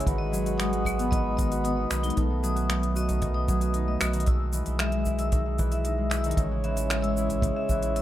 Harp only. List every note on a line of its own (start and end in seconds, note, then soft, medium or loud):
0.00 0.11 C#3 loud
0.00 0.11 G#3 medium
0.00 2.44 C#4 medium
0.00 0.13 E4 loud
0.07 0.18 D#3 medium
0.19 1.11 D#3 medium
0.32 1.17 F#3 loud
0.46 0.85 F#4 medium
0.59 0.71 G#3 medium
0.73 1.17 G#3 medium
0.86 1.51 F#4 medium
0.99 1.65 B3 loud
1.12 1.24 D#3 medium
1.25 1.37 D#3 medium
1.38 1.77 D#3 medium
1.51 2.55 F#4 medium
1.65 4.76 B3 medium
1.78 1.89 D#3 medium
1.91 2.15 D#3 medium
2.04 2.22 G#3 medium
2.16 2.28 D#3 medium
2.29 3.07 D#3 medium
2.43 3.14 F#3 loud
2.55 2.95 F#4 medium
2.69 2.81 A3 medium
2.82 3.87 A3 medium
2.95 3.61 F#4 medium
3.09 3.21 D#3 medium
3.22 3.34 D#3 medium
3.35 4.12 D#3 medium
3.49 4.19 F#3 loud
3.62 4.00 F#4 medium
3.75 4.59 D#4 medium
3.87 4.86 A3 medium
4.00 6.44 F#4 loud
4.13 4.25 D#3 loud
4.26 4.38 D#3 medium
4.39 5.18 D#3 medium
4.53 5.25 E3 loud
4.66 5.05 E4 medium
4.80 4.92 G#3 medium
4.93 5.25 G#3 medium
5.06 5.25 E4 loud
5.19 5.31 D#3 medium
5.33 5.44 D#3 medium
5.46 6.24 D#3 medium
5.58 6.30 E3 loud
5.72 5.91 E4 medium
5.85 6.18 D#4 medium
5.98 6.30 G#3 medium
6.12 6.31 E4 loud
6.25 6.43 D#3 loud
6.38 6.50 C#3 medium
6.51 7.29 C#3 medium
6.65 7.35 E3 loud
6.77 7.17 E4 medium
6.91 7.02 G#3 medium
7.03 8.02 G#3 medium
7.17 7.83 E4 medium
7.30 7.42 C#3 medium
7.43 7.56 C#3 medium
7.57 8.02 C#3 medium
7.70 8.02 E3 loud
7.83 8.02 E4 medium
7.96 8.02 C#4 medium